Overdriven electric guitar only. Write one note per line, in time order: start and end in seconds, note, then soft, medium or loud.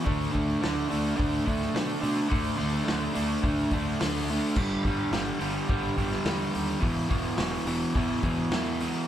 0.04 0.31 D3 loud
0.04 0.32 A3 loud
0.04 0.33 D4 loud
0.31 0.61 D3 loud
0.31 0.62 A3 loud
0.31 0.62 D4 loud
0.61 0.88 D3 medium
0.61 0.89 A3 medium
0.61 0.90 D4 medium
0.89 1.15 D3 medium
0.89 1.15 A3 loud
0.89 1.17 D4 loud
1.16 1.44 D3 loud
1.16 1.45 A3 medium
1.16 1.46 D4 loud
1.46 1.74 D3 medium
1.46 1.74 A3 loud
1.46 1.76 D4 loud
1.75 2.00 D3 loud
1.75 2.01 A3 loud
1.75 2.02 D4 loud
2.01 2.27 D3 medium
2.01 2.28 A3 medium
2.01 2.30 D4 loud
2.28 2.55 D3 loud
2.28 2.57 A3 loud
2.28 2.58 D4 loud
2.56 2.83 D3 medium
2.56 2.84 A3 medium
2.56 2.85 D4 medium
2.84 3.12 D3 medium
2.84 3.13 A3 medium
2.84 3.14 D4 medium
3.13 3.41 D3 medium
3.13 3.42 A3 loud
3.13 3.43 D4 loud
3.42 3.70 D3 medium
3.42 3.72 A3 loud
3.42 3.73 D4 loud
3.72 3.99 D3 medium
3.72 4.00 A3 loud
3.72 4.00 D4 medium
4.00 4.29 D3 loud
4.00 4.29 A3 loud
4.00 4.30 D4 loud
4.30 4.56 D3 medium
4.30 4.56 A3 loud
4.30 4.56 D4 medium
4.58 4.85 G2 medium
4.58 4.85 D3 loud
4.58 4.86 G3 loud
4.86 5.11 G2 medium
4.86 5.11 D3 loud
4.86 5.12 G3 loud
5.12 5.38 G2 medium
5.12 5.39 D3 medium
5.12 5.39 G3 medium
5.39 5.67 G2 medium
5.39 5.68 D3 loud
5.39 5.69 G3 loud
5.68 5.96 G2 medium
5.68 5.96 D3 medium
5.68 5.97 G3 loud
5.97 6.25 G2 medium
5.97 6.26 D3 loud
5.97 6.26 G3 loud
6.26 6.50 G2 loud
6.26 6.51 D3 loud
6.26 6.52 G3 loud
6.51 6.79 G2 medium
6.51 6.79 D3 loud
6.51 6.80 G3 medium
6.80 7.07 E2 loud
6.80 7.08 B2 loud
6.80 7.09 E3 loud
7.09 7.36 E2 medium
7.09 7.37 B2 loud
7.09 7.38 E3 loud
7.37 7.65 E2 medium
7.37 7.66 B2 medium
7.37 7.66 E3 medium
7.66 7.95 E2 medium
7.66 7.95 B2 medium
7.66 7.95 E3 loud
7.96 8.21 E2 loud
7.96 8.22 B2 loud
7.96 8.23 E3 loud
8.22 8.50 E2 medium
8.22 8.51 B2 loud
8.22 8.52 E3 loud
8.52 8.80 E2 loud
8.52 8.80 B2 loud
8.52 8.81 E3 loud
8.81 9.06 E2 medium
8.81 9.06 B2 loud
8.81 9.07 E3 loud